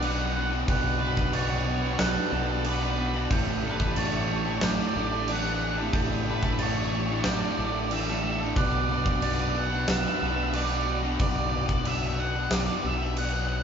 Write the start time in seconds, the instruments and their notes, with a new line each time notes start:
Already playing: fingered electric bass B1, string section B4 F#5 A5
0.01 overdriven electric guitar B2 F#3 B3 D4 F#4 B4, lead electric guitar F#5, glockenspiel D6, crash
0.12 lead electric guitar F#5
0.18 overdriven electric guitar B3 D4 F#4 B4, lead electric guitar F#5
0.26 lead electric guitar F#5
0.33 distorted electric guitar B3 D4 F#4, lead electric guitar F#5
0.37 distorted electric guitar B4, lead electric guitar F#5
0.51 overdriven electric guitar B3 D4 F#4 B4
0.67 fingered electric bass B1, overdriven electric guitar B2 F#3 B3 D4 F#4 B4, glockenspiel F#6, kick, crash
0.99 overdriven electric guitar B3 D4 F#4 B4, lead electric guitar B4
1.16 overdriven electric guitar B3 D4 F#4 B4, kick
1.33 overdriven electric guitar B2 F#3 B3 D4 F#4 B4, lead electric guitar C#5, glockenspiel A6, crash
1.40 lead electric guitar C#5
1.48 distorted electric guitar B3 D4 F#4 B4, lead electric guitar C#5
1.56 lead electric guitar C#5
1.64 overdriven electric guitar B3 D4 F#4, lead electric guitar C#5, muted distorted electric guitar stroke
1.69 overdriven electric guitar B4, lead electric guitar C#5
1.78 overdriven electric guitar B4, lead electric guitar C#5
1.83 overdriven electric guitar B3 D4 F#4, lead electric guitar C#5
1.93 lead electric guitar C#5
1.99 fingered electric bass B1, lead electric guitar A4, glockenspiel F#6, snare, crash
2.15 overdriven electric guitar B3 D4 F#4 B4
2.31 fingered electric bass B1, overdriven electric guitar B3 D4 F#4 B4, lead electric guitar A4
2.48 overdriven electric guitar B3 D4 F#4 B4
2.64 overdriven electric guitar B2 F#3 B3 D4 F#4 B4, glockenspiel D6, crash
2.69 lead electric guitar B4
2.76 lead electric guitar B4
2.81 overdriven electric guitar B3 D4 F#4 B4, lead electric guitar B4
2.90 lead electric guitar B4
2.98 distorted electric guitar B3 D4 F#4 B4, lead electric guitar B4
3.07 lead electric guitar B4
3.14 overdriven electric guitar B3 D4 F#4 B4
3.31 fingered electric bass A1, overdriven electric guitar A2 E3 A3 D4 E4 A4, string section G4 E5, glockenspiel G6, kick, crash
3.64 overdriven electric guitar A3 D4 E4 A4, lead electric guitar B4
3.80 overdriven electric guitar A3 D4 E4 A4, kick
3.96 overdriven electric guitar A2 E3 A3 D4 E4 A4, lead electric guitar C#5, glockenspiel A6, crash
4.06 lead electric guitar C#5
4.12 distorted electric guitar A3 D4 E4 A4, lead electric guitar C#5
4.21 lead electric guitar C#5
4.28 overdriven electric guitar A3 D4 E4, lead electric guitar C#5, muted distorted electric guitar stroke
4.33 overdriven electric guitar A4, lead electric guitar C#5
4.43 overdriven electric guitar E4 A4, lead electric guitar C#5
4.47 overdriven electric guitar A3 D4, lead electric guitar C#5
4.58 lead electric guitar C#5, snare, crash
4.62 fingered electric bass A1, lead electric guitar D5, glockenspiel G6
4.72 lead electric guitar D5
4.78 overdriven electric guitar A3 D4 E4 A4, lead electric guitar D5
4.88 lead electric guitar D5
4.94 fingered electric bass A1, overdriven electric guitar A3 D4 E4 A4, lead electric guitar D5
5.02 lead electric guitar D5
5.09 overdriven electric guitar E4 A4, lead electric guitar D5
5.14 overdriven electric guitar A3 D4, lead electric guitar D5
5.24 overdriven electric guitar A2, lead electric guitar D5, crash
5.28 overdriven electric guitar E3 A3 D4 E4 A4, lead electric guitar F#5, glockenspiel D6
5.39 lead electric guitar F#5
5.43 overdriven electric guitar A3 D4 E4 A4, lead electric guitar F#5
5.54 lead electric guitar F#5
5.61 distorted electric guitar A3 D4 E4 A4, lead electric guitar F#5
5.68 lead electric guitar F#5
5.77 overdriven electric guitar A3 D4 E4 A4
5.93 fingered electric bass A1, overdriven electric guitar A2 E3 A3 D4 E4 A4, glockenspiel G6, kick, crash
6.26 overdriven electric guitar A3 D4 E4 A4
6.30 lead electric guitar B4
6.43 overdriven electric guitar A3 D4 E4 A4, kick
6.59 overdriven electric guitar A2 E3 A3 D4 E4 A4, lead electric guitar C#5, glockenspiel A6, crash
6.70 lead electric guitar C#5
6.75 distorted electric guitar A3 D4 E4 A4, lead electric guitar C#5
6.85 lead electric guitar C#5
6.91 overdriven electric guitar A3 D4 E4 A4, lead electric guitar C#5, muted distorted electric guitar stroke
6.99 lead electric guitar C#5
7.06 overdriven electric guitar E4 A4, lead electric guitar C#5
7.11 overdriven electric guitar A3 D4, lead electric guitar C#5
7.22 fingered electric bass A1, lead electric guitar C#5, glockenspiel G6, snare, crash
7.27 lead electric guitar D5
7.34 lead electric guitar D5
7.41 overdriven electric guitar A3 D4 E4 A4, lead electric guitar D5
7.50 lead electric guitar D5
7.57 fingered electric bass A1, overdriven electric guitar A3 D4 E4 A4, lead electric guitar D5
7.64 lead electric guitar D5
7.71 overdriven electric guitar A4, lead electric guitar D5
7.76 overdriven electric guitar A3 D4 E4, lead electric guitar D5
7.87 overdriven electric guitar A2, lead electric guitar D5
7.91 overdriven electric guitar E3 A3 D4 E4 A4, lead electric guitar E5, glockenspiel D6, crash
8.00 lead electric guitar E5
8.07 overdriven electric guitar D4 E4 A4, lead electric guitar E5, snare
8.11 overdriven electric guitar A3, lead electric guitar E5
8.23 distorted electric guitar A3 D4 E4 A4, lead electric guitar E5
8.31 lead electric guitar E5
8.40 overdriven electric guitar A3 D4 E4 A4
8.56 fingered electric bass B1, overdriven electric guitar B2 F#3 B3 D4 F#4 B4, string section B4 F#5, lead electric guitar D5, glockenspiel F#6, kick, crash
8.67 lead electric guitar D5
8.72 lead electric guitar D5
8.81 lead electric guitar D5
8.89 overdriven electric guitar B3 D4 F#4 B4, lead electric guitar D5
8.97 lead electric guitar D5
9.04 overdriven electric guitar D4 F#4 B4, lead electric guitar D5, kick
9.08 overdriven electric guitar B3
9.12 lead electric guitar D5
9.20 overdriven electric guitar B2 F#3 B3 D4 F#4 B4, lead electric guitar D5, glockenspiel A6, crash
9.27 lead electric guitar D5
9.35 lead electric guitar D5
9.39 distorted electric guitar B3 D4 F#4 B4
9.43 lead electric guitar D5
9.51 overdriven electric guitar B3, lead electric guitar D5
9.55 overdriven electric guitar D4 F#4 B4, lead electric guitar F#5, muted distorted electric guitar stroke
9.70 overdriven electric guitar B3 D4 F#4 B4
9.88 fingered electric bass B1, lead electric guitar E5, glockenspiel F#6, snare, crash
9.97 lead electric guitar E5
10.03 overdriven electric guitar B3 D4 F#4 B4, lead electric guitar E5
10.12 lead electric guitar E5
10.20 fingered electric bass B1, overdriven electric guitar B3 D4 F#4 B4, lead electric guitar E5
10.28 lead electric guitar E5
10.34 overdriven electric guitar D4 F#4 B4, lead electric guitar E5
10.39 overdriven electric guitar B3
10.43 lead electric guitar E5
10.50 overdriven electric guitar B2 F#3, lead electric guitar E5, crash
10.54 overdriven electric guitar B3 D4 F#4 B4, lead electric guitar D5, glockenspiel D6
10.63 lead electric guitar D5
10.69 overdriven electric guitar B3 D4 F#4 B4, lead electric guitar D5
10.78 lead electric guitar D5
10.84 distorted electric guitar B3, lead electric guitar D5
10.88 distorted electric guitar D4 F#4 B4
10.92 lead electric guitar D5
11.02 overdriven electric guitar B3 D4 F#4 B4
11.19 fingered electric bass B1, overdriven electric guitar B2 F#3 B3 D4 F#4 B4, lead electric guitar D5, kick, crash
11.29 lead electric guitar D5
11.36 lead electric guitar D5
11.44 lead electric guitar D5
11.50 overdriven electric guitar B3 D4, lead electric guitar D5
11.54 overdriven electric guitar F#4 B4
11.59 lead electric guitar D5
11.66 overdriven electric guitar F#4 B4, lead electric guitar D5, kick
11.71 overdriven electric guitar B3 D4, lead electric guitar D5
11.81 overdriven electric guitar B2, lead electric guitar D5
11.85 overdriven electric guitar F#3 B3 D4 F#4 B4, lead electric guitar E5, crash
12.18 overdriven electric guitar B3 D4 F#4 B4, lead electric guitar F#5
12.35 overdriven electric guitar B3 D4 F#4 B4
12.51 fingered electric bass B1, lead electric guitar D5, snare, crash
12.68 overdriven electric guitar B3 D4 F#4 B4
12.84 fingered electric bass B1, overdriven electric guitar B3 D4 F#4 B4, lead electric guitar E5
13.01 overdriven electric guitar B3 D4 F#4 B4
13.17 overdriven electric guitar B2 F#3 B3 D4 B4, lead electric guitar F#5, crash
13.21 overdriven electric guitar F#4
13.26 lead electric guitar F#5
13.33 overdriven electric guitar B3 D4 F#4 B4, lead electric guitar F#5
13.41 lead electric guitar F#5
13.48 lead electric guitar F#5
13.57 lead electric guitar F#5